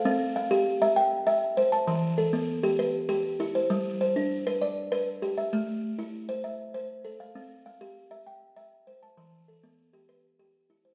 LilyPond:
\new Staff \with { instrumentName = "Kalimba" } { \time 12/8 \key c \major \tempo 4. = 132 << { f''8 r8 f''4. r8 g''4. r4 a''8~ | a''8 r8 a'4. r8 b'4. r4 c''8~ | c''8 r8 c''4. r8 d''4. r4 e''8~ | e''8 r2 r8 e''4. r4 f''8~ |
f''8 r8 f''4. r8 g''4. r4 a''8~ | a''8 r8 a'4. r8 b'4. r4 c''8 | } \\ { c'4 r8 g'4 e''4 r8 e''4 c''4 | e4 r8 b4 g'4 r8 g'4 e'4 | g4 r8 d'4 b'4 r8 b'4 g'4 | a4 r8 e'4 c''4 r8 c''4 a'4 |
c'4 r8 g'4 e''4 r8 e''4 c''4 | e4 r8 b4 g'4 r8 g'4 e'4 | } >> }